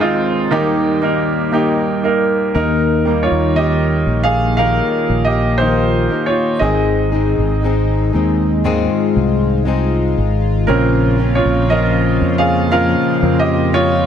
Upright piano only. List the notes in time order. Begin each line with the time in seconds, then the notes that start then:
Already playing: D#2 D#3 G#4
0.00 C4 D#4 F4
0.51 D#2 D#3 A#3 D#4 G4
1.02 A#3 D#4 A#4
1.52 A#3 D#4 G4
2.04 A#3 D#4 A#4
2.55 D#4 A#4
3.05 D#3 G3 A#3
3.23 F4 C#5
3.56 G4 D#5
4.24 G#4 F5
4.57 A#4 F5
5.25 G4 D#5
5.58 D#4 C5
6.26 F4 C#5
6.59 D#3 G#3 C4 G#4 D#5
10.67 C#3 A#3 C4 C#4 A#4
11.35 F4 C#5
11.70 A#4 D#5
12.38 G#4 F5
12.72 A#4 F5
13.22 C#3 A#3 C4
13.39 G4 D#5
13.74 F4 C#5